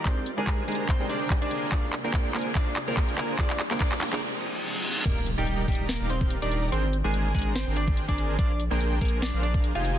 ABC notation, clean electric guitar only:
X:1
M:4/4
L:1/16
Q:"Swing 16ths" 1/4=144
K:Eb
V:1 name="Clean electric guitar"
[Cc]2 z [A,A]2 z [A,A]2 [Cc]2 [Dd]2 z [Dd]2 z | [Dd]2 z [B,B]2 z [B,B]2 [Dd]2 z [B,B]2 z [B,B]2 | [Dd]2 z [B,B] [Dd]2 z [B,B] z8 | [B,B]2 z [G,G]2 z [G,G]2 [B,B]2 [Cc]2 z [Dd]2 z |
[Cc]2 z [A,A]2 z [A,A]2 [Cc]2 [Dd]2 z [Dd]2 z | [Dd]2 z [B,B]2 z [B,B]2 [Dd]2 [Dd]2 z [Ff]2 z |]